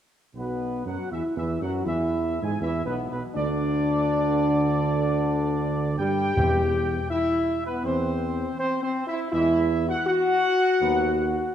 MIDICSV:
0, 0, Header, 1, 6, 480
1, 0, Start_track
1, 0, Tempo, 751880
1, 223, Time_signature, 4, 2, 24, 8
1, 4061, Tempo, 740741
1, 7422, End_track
2, 0, Start_track
2, 0, Title_t, "Trumpet section"
2, 0, Program_c, 0, 61
2, 227, Note_on_c, 0, 71, 50
2, 526, Note_off_c, 0, 71, 0
2, 555, Note_on_c, 0, 78, 57
2, 712, Note_off_c, 0, 78, 0
2, 713, Note_on_c, 0, 76, 59
2, 784, Note_off_c, 0, 76, 0
2, 874, Note_on_c, 0, 76, 61
2, 1020, Note_off_c, 0, 76, 0
2, 1029, Note_on_c, 0, 78, 58
2, 1100, Note_off_c, 0, 78, 0
2, 1190, Note_on_c, 0, 76, 66
2, 1522, Note_off_c, 0, 76, 0
2, 1546, Note_on_c, 0, 80, 65
2, 1665, Note_off_c, 0, 80, 0
2, 1667, Note_on_c, 0, 76, 59
2, 1814, Note_off_c, 0, 76, 0
2, 1822, Note_on_c, 0, 71, 57
2, 1894, Note_off_c, 0, 71, 0
2, 1981, Note_on_c, 0, 71, 54
2, 2053, Note_off_c, 0, 71, 0
2, 2140, Note_on_c, 0, 74, 74
2, 3794, Note_off_c, 0, 74, 0
2, 3819, Note_on_c, 0, 79, 82
2, 4513, Note_off_c, 0, 79, 0
2, 4539, Note_on_c, 0, 76, 76
2, 4875, Note_off_c, 0, 76, 0
2, 4901, Note_on_c, 0, 71, 63
2, 5013, Note_off_c, 0, 71, 0
2, 5023, Note_on_c, 0, 72, 70
2, 5477, Note_off_c, 0, 72, 0
2, 5504, Note_on_c, 0, 72, 77
2, 5652, Note_off_c, 0, 72, 0
2, 5661, Note_on_c, 0, 72, 72
2, 5811, Note_off_c, 0, 72, 0
2, 5819, Note_on_c, 0, 76, 78
2, 5892, Note_off_c, 0, 76, 0
2, 5984, Note_on_c, 0, 76, 78
2, 6318, Note_off_c, 0, 76, 0
2, 6350, Note_on_c, 0, 78, 80
2, 6458, Note_off_c, 0, 78, 0
2, 6467, Note_on_c, 0, 78, 104
2, 7422, Note_off_c, 0, 78, 0
2, 7422, End_track
3, 0, Start_track
3, 0, Title_t, "French horn section"
3, 0, Program_c, 1, 60
3, 232, Note_on_c, 1, 59, 62
3, 529, Note_off_c, 1, 59, 0
3, 556, Note_on_c, 1, 66, 67
3, 713, Note_off_c, 1, 66, 0
3, 717, Note_on_c, 1, 64, 69
3, 868, Note_off_c, 1, 64, 0
3, 875, Note_on_c, 1, 64, 64
3, 1020, Note_off_c, 1, 64, 0
3, 1036, Note_on_c, 1, 66, 73
3, 1180, Note_off_c, 1, 66, 0
3, 1181, Note_on_c, 1, 64, 71
3, 1517, Note_off_c, 1, 64, 0
3, 1560, Note_on_c, 1, 68, 77
3, 1610, Note_off_c, 1, 68, 0
3, 1678, Note_on_c, 1, 64, 77
3, 1820, Note_off_c, 1, 64, 0
3, 1825, Note_on_c, 1, 59, 71
3, 1970, Note_off_c, 1, 59, 0
3, 1978, Note_on_c, 1, 59, 67
3, 2050, Note_off_c, 1, 59, 0
3, 2129, Note_on_c, 1, 62, 86
3, 3789, Note_off_c, 1, 62, 0
3, 3828, Note_on_c, 1, 67, 95
3, 4542, Note_on_c, 1, 64, 90
3, 4544, Note_off_c, 1, 67, 0
3, 4877, Note_off_c, 1, 64, 0
3, 4918, Note_on_c, 1, 59, 86
3, 5022, Note_on_c, 1, 60, 75
3, 5030, Note_off_c, 1, 59, 0
3, 5496, Note_off_c, 1, 60, 0
3, 5503, Note_on_c, 1, 60, 85
3, 5647, Note_off_c, 1, 60, 0
3, 5655, Note_on_c, 1, 60, 87
3, 5808, Note_off_c, 1, 60, 0
3, 5818, Note_on_c, 1, 64, 97
3, 5969, Note_off_c, 1, 64, 0
3, 5977, Note_on_c, 1, 64, 98
3, 6314, Note_off_c, 1, 64, 0
3, 6341, Note_on_c, 1, 66, 95
3, 6395, Note_off_c, 1, 66, 0
3, 6458, Note_on_c, 1, 66, 107
3, 7422, Note_off_c, 1, 66, 0
3, 7422, End_track
4, 0, Start_track
4, 0, Title_t, "Trombone section"
4, 0, Program_c, 2, 61
4, 222, Note_on_c, 2, 47, 65
4, 524, Note_off_c, 2, 47, 0
4, 546, Note_on_c, 2, 54, 63
4, 697, Note_off_c, 2, 54, 0
4, 709, Note_on_c, 2, 52, 59
4, 781, Note_off_c, 2, 52, 0
4, 867, Note_on_c, 2, 52, 61
4, 1016, Note_off_c, 2, 52, 0
4, 1028, Note_on_c, 2, 54, 66
4, 1175, Note_off_c, 2, 54, 0
4, 1188, Note_on_c, 2, 52, 64
4, 1521, Note_off_c, 2, 52, 0
4, 1543, Note_on_c, 2, 56, 61
4, 1597, Note_off_c, 2, 56, 0
4, 1669, Note_on_c, 2, 52, 64
4, 1815, Note_off_c, 2, 52, 0
4, 1825, Note_on_c, 2, 47, 60
4, 1972, Note_off_c, 2, 47, 0
4, 1987, Note_on_c, 2, 47, 59
4, 2132, Note_off_c, 2, 47, 0
4, 2141, Note_on_c, 2, 50, 82
4, 3795, Note_off_c, 2, 50, 0
4, 3817, Note_on_c, 2, 55, 82
4, 4042, Note_off_c, 2, 55, 0
4, 4057, Note_on_c, 2, 52, 64
4, 4059, Note_on_c, 2, 60, 66
4, 4230, Note_off_c, 2, 52, 0
4, 4231, Note_off_c, 2, 60, 0
4, 5012, Note_on_c, 2, 60, 67
4, 5013, Note_on_c, 2, 52, 66
4, 5188, Note_off_c, 2, 52, 0
4, 5188, Note_off_c, 2, 60, 0
4, 5980, Note_on_c, 2, 56, 74
4, 5981, Note_on_c, 2, 52, 78
4, 6152, Note_off_c, 2, 56, 0
4, 6153, Note_off_c, 2, 52, 0
4, 6938, Note_on_c, 2, 54, 73
4, 6938, Note_on_c, 2, 59, 70
4, 7111, Note_off_c, 2, 54, 0
4, 7111, Note_off_c, 2, 59, 0
4, 7422, End_track
5, 0, Start_track
5, 0, Title_t, "Timpani"
5, 0, Program_c, 3, 47
5, 4064, Note_on_c, 3, 40, 69
5, 4757, Note_off_c, 3, 40, 0
5, 7422, End_track
6, 0, Start_track
6, 0, Title_t, "Tuba"
6, 0, Program_c, 4, 58
6, 225, Note_on_c, 4, 35, 58
6, 525, Note_off_c, 4, 35, 0
6, 547, Note_on_c, 4, 42, 63
6, 619, Note_off_c, 4, 42, 0
6, 709, Note_on_c, 4, 40, 50
6, 781, Note_off_c, 4, 40, 0
6, 870, Note_on_c, 4, 40, 68
6, 1017, Note_off_c, 4, 40, 0
6, 1029, Note_on_c, 4, 42, 64
6, 1176, Note_off_c, 4, 42, 0
6, 1188, Note_on_c, 4, 40, 65
6, 1521, Note_off_c, 4, 40, 0
6, 1546, Note_on_c, 4, 44, 62
6, 1657, Note_off_c, 4, 44, 0
6, 1664, Note_on_c, 4, 40, 71
6, 1812, Note_off_c, 4, 40, 0
6, 1822, Note_on_c, 4, 35, 59
6, 1970, Note_off_c, 4, 35, 0
6, 1982, Note_on_c, 4, 35, 56
6, 2054, Note_off_c, 4, 35, 0
6, 2140, Note_on_c, 4, 38, 73
6, 3821, Note_on_c, 4, 43, 74
6, 3831, Note_off_c, 4, 38, 0
6, 4057, Note_off_c, 4, 43, 0
6, 4060, Note_on_c, 4, 40, 71
6, 4460, Note_off_c, 4, 40, 0
6, 5018, Note_on_c, 4, 40, 81
6, 5420, Note_off_c, 4, 40, 0
6, 5981, Note_on_c, 4, 40, 88
6, 6382, Note_off_c, 4, 40, 0
6, 6941, Note_on_c, 4, 39, 86
6, 7341, Note_off_c, 4, 39, 0
6, 7422, End_track
0, 0, End_of_file